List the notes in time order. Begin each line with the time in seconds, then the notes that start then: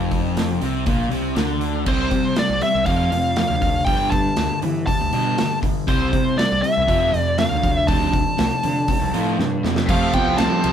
Already playing: F1 F2
0.11 kick, open hi-hat
0.37 snare, open hi-hat
0.61 C2 C3, open hi-hat
0.86 A#1 A#2, kick, open hi-hat
1.11 C2 C3, open hi-hat
1.36 D2 D3, snare, open hi-hat
1.61 open hi-hat
1.86 C2 C3 G3 C4 C5, kick, crash
2.11 C3 G3, kick, open hi-hat
2.36 C3 G3 D5, snare, open hi-hat
2.50 C2
2.61 C3 G3 E5, open hi-hat
2.75 C2
2.86 F2 C3 F3 F5, kick, open hi-hat
3.12 F2 C3, open hi-hat
3.36 F2 C3 F5, snare, open hi-hat
3.50 D2
3.62 F2 C3, kick, open hi-hat
3.85 G2 D3 G3 G5, kick, open hi-hat
4.10 G2 D3 A5, kick, open hi-hat
4.36 D2 G2 D3, snare, open hi-hat
4.62 G2 D3 E3, open hi-hat
4.87 G2 D3 A5, kick, open hi-hat
5.00 D2
5.13 G2 B2 D3 G3, open hi-hat
5.37 G2 D3, snare, open hi-hat
5.63 G2 D3, kick, open hi-hat
5.87 C2 C3 G3 C4 C5, kick, open hi-hat
6.12 C3 G3, kick, open hi-hat
6.37 C3 G3 D5, snare, open hi-hat
6.52 C2
6.62 C3 G3 E5, open hi-hat
6.77 C2
6.86 F2 C3 F3, kick, open hi-hat
7.12 F2 C3, open hi-hat
7.19 D5
7.38 F2 C3 F5, snare, open hi-hat
7.52 D2
7.62 F2 C3, kick, open hi-hat
7.77 E5
7.87 F2 C3 F3 A5, kick, open hi-hat
8.13 F2 C3, kick, open hi-hat
8.38 C2 F2 C3, snare, open hi-hat
8.63 F2 C3 D3, open hi-hat
8.88 F2 C3, kick, open hi-hat
9.02 C2
9.13 F2 A2 C3 F3, open hi-hat
9.39 F2 G2 C3, snare
9.58 B3 C4
9.64 F2 C3 D4 E4, snare
9.69 F4 G4
9.76 A4 B4, snare
9.80 C5 D5
9.86 F2 C3 F3 A3 F4 G4 A4 C5 E5, kick, crash
9.90 F5
10.13 B3 C4 G5, kick, ride
10.26 C2
10.38 G3 C4 A5, snare, ride
10.61 C2 F2 C3 F3 F4, ride